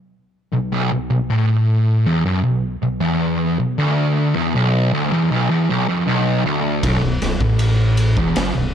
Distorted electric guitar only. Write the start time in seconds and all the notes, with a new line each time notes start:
0.53 B1
0.72 B1
0.92 B1
1.11 B1
1.30 A2
2.06 E2
2.25 F#2
2.44 B1
2.83 B1
3.01 E2
3.59 B1
3.78 D2
4.35 E2
4.55 B1
4.93 D2
5.12 E2
5.31 B1
5.50 E2
5.70 B1
5.89 F2
6.08 B1
6.46 D2
6.84 B1
7.03 B1
7.23 B1
7.41 A2
8.18 E2
8.37 F#2
8.56 B1